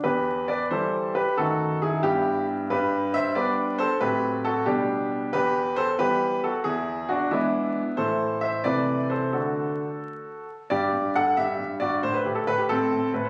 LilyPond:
<<
  \new Staff \with { instrumentName = "Grand piano" } { \time 6/8 \key e \minor \tempo 4. = 90 <g' b'>4 <b' d''>8 <a' c''>4 <g' b'>8 | <fis' a'>4 <e' gis'>8 <e' g'>4. | <g' b'>4 <c'' e''>8 <b' d''>4 <a' c''>8 | <g' b'>4 <fis' a'>8 <d' g'>4. |
\key g \major <g' b'>4 <a' c''>8 <g' b'>4 <fis' a'>8 | <e' gis'>4 <d' fis'>8 <b e'>4. | <a' c''>4 <c'' e''>8 <b' d''>4 <a' c''>8 | <fis' a'>2~ <fis' a'>8 r8 |
<g' d''>4 <a' fis''>8 <g' e''>4 <fis' d''>8 | c''16 b'16 g'16 a'16 b'16 g'16 <c' a'>4 b'16 c''16 | }
  \new Staff \with { instrumentName = "Grand piano" } { \clef bass \time 6/8 \key e \minor e,4. <e g g'>4. | <fis, dis a dis'>4. <g, g b>4. | g,4. <g b d'>4. | <a, fis a c'>4. <b, g b>4. |
\key g \major e,4. <e g b>4. | e,4. <e gis d'>4. | <a, e a e'>4. <c e a e'>4. | <d a d'>4. r4. |
g,8 g,8 g,8 g,8 g,8 g,8 | a,8 a,8 a,8 a,8 a,8 a,8 | }
>>